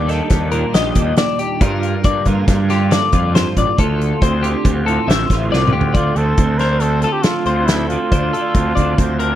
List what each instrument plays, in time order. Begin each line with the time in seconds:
Already playing: picked electric bass D#2, clean electric guitar D#2 G3
0.08 clean electric guitar D#3 D4 A4, snare, closed hi-hat
0.30 picked electric bass D#2, clean electric guitar G3, kick, snare, closed hi-hat
0.52 clean electric guitar A#2 D4 A#4, closed hi-hat
0.74 picked electric bass A#1, clean electric guitar G4 D#5, snare, closed hi-hat
0.95 picked electric bass D#2, clean electric guitar D4, kick, closed hi-hat
1.16 clean electric guitar D#2 D4 D5, snare, closed hi-hat
1.39 clean electric guitar G4, closed hi-hat
1.61 clean electric guitar G2 F4 A#4, picked electric bass G2, kick, closed hi-hat
1.83 closed hi-hat
2.04 picked electric bass G2, clean electric guitar A#3 D5, kick, closed hi-hat
2.25 picked electric bass G2, clean electric guitar D3 F4 A#4, kick, closed hi-hat
2.48 picked electric bass G2, clean electric guitar A#3, kick, snare, closed hi-hat
2.69 clean electric guitar D3 F4 G4, snare, closed hi-hat
2.91 clean electric guitar A4 D5, snare, closed hi-hat
3.12 picked electric bass F2, clean electric guitar F4, kick, closed hi-hat
3.33 clean electric guitar G2 F4 C5, snare, closed hi-hat
3.57 picked electric bass A1, clean electric guitar D5, kick, closed hi-hat
3.77 clean electric guitar D2 F4 A4, picked electric bass D2, kick, closed hi-hat
4.01 closed hi-hat
4.22 picked electric bass D2, clean electric guitar C4 C5, kick, closed hi-hat
4.43 clean electric guitar D3 F4 G4, closed hi-hat
4.65 picked electric bass D2, clean electric guitar C4, kick, closed hi-hat
4.86 clean electric guitar A2 F4 A4, closed hi-hat
5.08 picked electric bass A1, clean electric guitar C5 E5, snare, closed hi-hat
5.30 picked electric bass A1, clean electric guitar F4, kick, snare, closed hi-hat
5.52 picked electric bass C2, clean electric guitar D2 F4 D5, snare
5.67 mid tom
5.73 picked electric bass D2, clean electric guitar G4
5.81 floor tom
5.94 picked electric bass D2, clean electric guitar D2 D3 C4 D5, trumpet F4, kick, closed hi-hat
6.16 picked electric bass D2, clean electric guitar D3 C5, trumpet A4, closed hi-hat
6.37 picked electric bass D2, clean electric guitar C4, kick, closed hi-hat
6.59 clean electric guitar A4 A#4, trumpet C5, snare, closed hi-hat
6.80 clean electric guitar C4 C5, trumpet A4, closed hi-hat
7.02 clean electric guitar F4 A4, trumpet A4, closed hi-hat
7.12 trumpet G4
7.23 clean electric guitar D3, trumpet F4, snare, closed hi-hat
7.46 picked electric bass D2, clean electric guitar C4 C5, closed hi-hat
7.66 clean electric guitar D2 A4, trumpet E4, snare, closed hi-hat
7.70 clean electric guitar C4
7.89 clean electric guitar D3, trumpet F4, closed hi-hat
8.12 picked electric bass D2, clean electric guitar D2 D4 C5, kick, closed hi-hat
8.33 clean electric guitar D3 A4, closed hi-hat
8.54 picked electric bass D2, clean electric guitar C4, kick, closed hi-hat
8.75 picked electric bass D2, clean electric guitar D4 D5, kick, closed hi-hat
8.98 picked electric bass D2, clean electric guitar C4 C5, kick, closed hi-hat
9.19 clean electric guitar D4 A#4, closed hi-hat